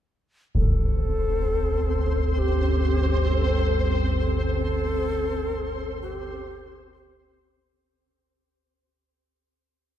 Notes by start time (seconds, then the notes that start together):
0.53 G1 D2 C4 A4 C5, concert bass drum
2.00 D3
2.38 G4
2.63 D2
3.28 A4
3.33 G4
4.19 A4
6.02 G4
6.94 G4